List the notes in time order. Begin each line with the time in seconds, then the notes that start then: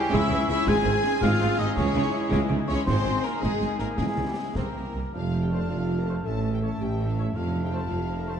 Already playing: E3 G3 C#4 E4 G4 G#4 G5
0.12 C#2 C#3 G#3 C#4 E4 E5 E6, concert bass drum, snare
0.29 C#2 C#3 E3
0.48 C#2 C#3 E4 E5 E6, snare
0.67 G#1 G#2 D#3 G#3 C4 F4 G#4 G#5 G#6, concert bass drum, snare, crash
0.85 G#1 G#2 D#3 D#4
1.04 C#4, snare
1.20 G#1 G#2 G#3 C4 F4 F5 F6, concert bass drum, snare
1.40 G#1 G#2 D#3, snare
1.57 G#1 G#2 C3 D#4 D#5 D#6, snare
1.76 C#2 C#3 E3 G#3 C#4 E4 C#5 C#6, concert bass drum, snare
1.95 C#2 C#3 E3 D#4
2.16 E4
2.31 C#2 C#3 G#3 C#4, concert bass drum, snare
2.49 C#2 C#3 E3 D#4
2.67 C#2 C#3 C#4 E4 C#5 C#6, snare
2.86 G#1 G#2 D#3 G#3 C4 D#4 F4 G#4 C5 C6, concert bass drum, snare, crash
3.05 G#1 G#2 D#3
3.24 A#3 A#4 A#5, snare
3.40 G#1 G#2 G#3 D#4 G#4 G#5, concert bass drum, snare
3.61 G#1 G#2 D#3, snare
3.79 G#1 G#2 C3 A#3 A#4 A#5, snare
3.97 C#2 C#3 E3 G#3 E4 G#4 G#5, concert bass drum, snare
4.17 C#2 C#3 E3
4.27 G3 G4 G5
4.34 G#3 G#4 G#5
4.54 C2 C3 A#3 C4 G4 A#4 A#5, concert bass drum, snare
4.74 C2 C3 A#3
4.94 C2 C3 G3
5.14 F1 F2 A3 C4 D4 F4 F5 A5
5.32 A3 C4
5.42 G4 G5
5.49 F3 A3 C4 A4 C5 A5
5.69 F1 F2 A3 C4 F4 F5
5.87 A3 C4
5.99 A#4 A#5
6.05 F3 A3 C4 A4 C5 A5
6.23 A1 A2 A3 C#4 A4 E5 A5
6.43 A3 C#4
6.52 G4 G5
6.61 E3 A3 C#4 A4 C#5 A5
6.79 A1 A2 A3 C#4 E4 G4 G5
6.98 A3 C#4
7.09 F4 F5
7.16 E3 A3 C#4 E4 C#5 E5
7.34 F1 F2 A3 C4 F4 F5 A5
7.54 A3 C4
7.63 G4 G5
7.71 F3 A3 C4 A4 C5 A5
7.87 F1 F2 A3 C4 F4
7.92 F5
8.08 A3 C4
8.17 A#4 A#5
8.25 F3 A3 C4 A4 C5 A5